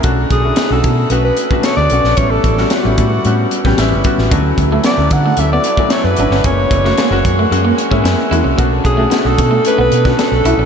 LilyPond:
<<
  \new Staff \with { instrumentName = "Alto saxophone" } { \time 4/4 \key b \dorian \tempo 4 = 112 r8 gis'8. a'8. b'16 b'8. cis''16 d''8. | cis''16 a'8. fis'2 r4 | r4 d''8 fis''8 e''16 d''8. cis''16 b'8. | cis''2 r2 |
r8 gis'8. a'8. b'16 b'8. a'4 | }
  \new Staff \with { instrumentName = "Grand piano" } { \time 4/4 \key b \dorian <a cis' d' fis'>8. <a cis' d' e'>8 <a cis' d' fis'>8. <a cis' d' fis'>8. <a cis' d' fis'>8. <a cis' d' fis'>8 | <g b cis' e'>8. <g b cis' fis'>8 <g b cis' e'>8. <g b cis' fis'>8. <g b cis' g'>16 <g b cis' e'>8 <g b cis' fis'>8 | <fis a cis' e'>8. <fis a cis' e'>8 <fis a cis' e'>8. <fis a cis' e'>8. <fis a cis' e'>8. <fis a cis' e'>8 | <gis ais cis' e'>8. <gis ais cis' fis'>8 <gis ais cis' fis'>8. <gis ais cis' fis'>8. <gis ais cis' e'>8. <gis ais cis' fis'>8 |
<a cis' d' fis'>8. <a cis' d' fis'>8 <a cis' d' fis'>8. <a cis' d' a'>8. <a cis' d' fis'>8. <a cis' d' fis'>8 | }
  \new Staff \with { instrumentName = "Clean electric guitar" } { \time 4/4 \key b \dorian r1 | r1 | d'16 r8 a16 b16 r8 a16 r16 b16 r16 cis'16 r8 d'16 cis'16 | cis'16 r8 a16 ais16 r8 a16 r16 ais16 r16 cis'16 r8 e'16 cis'16 |
b16 r8 a16 b16 r8 a16 r16 b16 r16 d'16 r8 e'16 d'16 | }
  \new Staff \with { instrumentName = "Fingered electric bass" } { \clef bass \time 4/4 \key b \dorian b,,8 b,,8 r16 b,,16 b,8 b,,8 r8. d,16 b,,16 ais,,16 | a,,8 a,,8 r16 a,,16 a,8 a,8 r16 a,,16 a,,16 g,,16 r16 a,,16 | d,8 d,8 r16 d,16 d8 d,8 r8. fis,16 gis,,16 g,,16 | fis,,8 fis,,8 r16 fis,,16 fis,8 fis,8 r16 gis,16 fis,16 r16 e,16 c,16 |
b,,8 b,,8 r16 b,,16 b,8 r16 b,,16 b,8 r16 b,,16 b,,16 ais,,16 | }
  \new DrumStaff \with { instrumentName = "Drums" } \drummode { \time 4/4 <hh bd>8 <hh bd>8 <hh sn>8 <hh bd>8 hh8 hh16 bd16 <hh sn>8 hh16 sn16 | <hh bd>8 <hh bd>16 sn16 <hh sn>8 <hh bd>8 hh8 hh16 <bd sn>16 <hh sn>8 <hh bd>16 sn16 | <hh bd>8 <hh bd>8 <hh sn>8 <hh bd>8 hh8 hh16 bd16 <hh sn>8 hh16 sn16 | <hh bd>8 <hh bd>16 sn16 <hh sn>8 <hh bd>8 hh8 hh16 bd16 <hh sn>8 hh8 |
<hh bd>8 <hh bd>8 <hh sn>8 <hh bd>8 hh8 hh16 <bd sn>16 <hh sn>8 hh8 | }
>>